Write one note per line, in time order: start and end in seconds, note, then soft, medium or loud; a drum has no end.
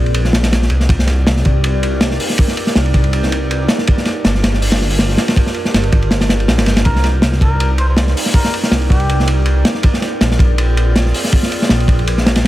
0.00 0.69 A#1 medium
0.00 0.31 C4 medium
0.00 0.31 F4 medium
0.00 0.31 G#4 medium
0.00 0.31 A#4 medium
0.00 0.31 D5 medium
0.06 ride soft
0.14 ride medium
0.25 snare soft
0.33 snare loud
0.33 ride medium
0.43 snare medium
0.43 ride medium
0.52 snare medium
0.52 ride medium
0.62 snare soft
0.70 1.25 C2 medium
0.70 ride medium
0.80 snare soft
0.89 1.80 C4 medium
0.89 1.80 D#4 medium
0.89 1.80 G4 medium
0.89 1.80 A#4 medium
0.89 1.80 D5 loud
0.89 kick loud
0.89 ride medium
0.99 snare medium
1.07 snare soft
1.07 ride medium
1.26 1.43 C2 medium
1.26 snare loud
1.26 ride medium
1.36 snare medium
1.45 2.19 C2 medium
1.45 kick medium
1.45 ride medium
1.64 ride medium
1.83 ride medium
2.01 snare loud
2.01 ride medium
2.11 snare medium
2.20 open hi-hat medium
2.30 snare soft
2.38 3.30 C4 medium
2.38 3.29 D#4 medium
2.38 3.29 G4 medium
2.38 3.29 A#4 medium
2.38 3.29 D5 loud
2.38 kick loud
2.38 ride medium
2.48 snare soft
2.57 ride medium
2.67 snare soft
2.75 2.93 C2 medium
2.75 snare loud
2.75 ride medium
2.86 ride soft
2.94 3.67 C2 medium
2.94 kick medium
2.94 ride medium
3.04 ride soft
3.13 ride medium
3.23 snare soft
3.32 ride medium
3.51 ride medium
3.68 snare medium
3.68 ride medium
3.78 snare soft
3.87 4.78 D4 medium
3.87 4.78 F4 medium
3.87 4.78 G4 medium
3.87 4.78 A#4 medium
3.87 4.78 D5 loud
3.87 kick loud
3.87 ride medium
3.98 snare soft
4.05 snare soft
4.05 ride medium
4.25 4.42 G1 loud
4.25 snare loud
4.25 ride medium
4.35 snare medium
4.43 5.17 G1 medium
4.43 snare loud
4.43 ride medium
4.54 snare soft
4.62 open hi-hat medium
4.72 snare loud
4.72 ride medium
4.81 snare soft
4.90 open hi-hat medium
4.99 snare loud
4.99 ride medium
5.09 snare medium
5.18 snare loud
5.18 ride medium
5.28 snare loud
5.28 ride medium
5.36 6.27 D4 medium
5.36 6.28 F4 medium
5.36 6.27 G4 medium
5.36 6.28 A#4 medium
5.36 6.27 D5 loud
5.36 kick loud
5.36 ride medium
5.46 snare medium
5.54 ride medium
5.65 snare soft
5.74 5.91 G1 medium
5.74 snare loud
5.74 ride medium
5.83 ride soft
5.92 6.48 G1 medium
5.92 kick loud
5.92 ride medium
6.02 ride soft
6.11 snare medium
6.11 ride medium
6.21 snare medium
6.21 ride medium
6.29 snare loud
6.29 ride medium
6.40 ride soft
6.48 6.60 A#1 medium
6.48 snare loud
6.48 ride medium
6.58 6.87 G1 medium
6.58 snare loud
6.58 ride medium
6.66 snare medium
6.66 ride medium
6.77 snare medium
6.77 ride medium
6.85 7.22 C2 medium
6.85 7.77 C4 medium
6.85 7.77 D#4 medium
6.85 7.77 G4 medium
6.85 7.08 A#4 medium
6.85 7.77 A#4 medium
6.85 7.77 D5 loud
6.85 kick loud
6.85 ride medium
6.96 snare soft
7.04 snare soft
7.04 ride medium
7.22 7.40 C2 medium
7.22 snare loud
7.22 ride medium
7.33 snare soft
7.41 8.14 C2 medium
7.41 7.70 A#4 medium
7.41 kick medium
7.41 ride medium
7.60 ride medium
7.78 7.85 C5 medium
7.78 ride medium
7.89 7.94 C5 medium
7.97 snare loud
7.97 ride medium
8.07 snare medium
8.17 open hi-hat medium
8.26 snare soft
8.34 9.26 C4 medium
8.34 9.25 D#4 medium
8.34 9.25 G4 medium
8.34 9.26 A#4 medium
8.34 8.57 A#4 medium
8.34 9.26 D5 medium
8.34 kick loud
8.34 ride medium
8.44 snare soft
8.54 ride medium
8.63 snare soft
8.71 8.89 C2 medium
8.71 snare loud
8.71 ride medium
8.82 ride soft
8.90 9.64 C2 medium
8.90 9.28 G4 medium
8.90 kick medium
8.90 ride medium
9.00 ride soft
9.09 ride medium
9.20 snare soft
9.28 ride medium
9.46 ride medium
9.65 snare loud
9.65 ride medium
9.74 snare soft
9.83 10.75 C4 medium
9.83 10.75 F4 medium
9.83 10.75 G#4 medium
9.83 10.75 A#4 medium
9.83 10.75 D5 loud
9.83 kick loud
9.83 ride medium
9.94 snare soft
10.02 snare soft
10.02 ride medium
10.21 10.38 A#1 medium
10.21 snare loud
10.21 ride medium
10.31 snare medium
10.39 11.13 A#1 medium
10.39 kick loud
10.39 ride medium
10.58 ride medium
10.77 ride medium
10.96 snare loud
10.96 ride medium
11.06 snare medium
11.14 open hi-hat medium
11.24 snare soft
11.32 12.24 C4 medium
11.32 12.24 F4 medium
11.32 12.24 G#4 medium
11.32 12.24 A#4 medium
11.32 12.24 D5 loud
11.32 kick loud
11.32 ride medium
11.43 snare medium
11.52 ride medium
11.62 snare soft
11.69 11.87 A#1 loud
11.69 snare loud
11.69 ride medium
11.80 ride soft
11.88 12.47 A#1 medium
11.88 kick medium
11.88 ride medium
11.99 ride soft
12.07 ride medium
12.18 snare soft
12.26 snare medium
12.26 ride medium
12.36 snare medium
12.36 ride medium